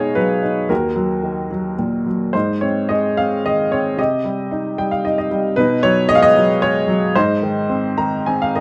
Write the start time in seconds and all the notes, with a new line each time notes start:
Already playing: B2 G#3 D#4 G#4 C#5 D#5 F5
0.15 F#3 B4
0.43 D#4
0.69 D#2 F#4 A#4
0.96 F#3
1.23 D#3
1.51 F#3
1.79 A#2
2.06 F#3
2.33 G#2 D#4 C5
2.61 C4 C#5
2.89 G#3 D#5
3.17 C4 F5
3.45 D#3 D#5
3.71 C4 C#5
3.98 C3 G4 D#5
4.24 G3
4.51 D#4
4.78 G3 G5
4.91 F5
5.05 D#4 D#5
5.18 D#5
5.31 G3
5.56 B2 D#4 B4
5.83 F#3 C#5
6.09 G#3 D#5
6.15 F5
6.22 D#5
6.36 F#3
6.62 G#3 C#5
6.88 F#3
7.15 G#2 D#4 C5
7.42 D#3
7.69 C4
7.98 D#3 A#5
8.26 C4 G#5
8.42 F5
8.55 D#3 D#5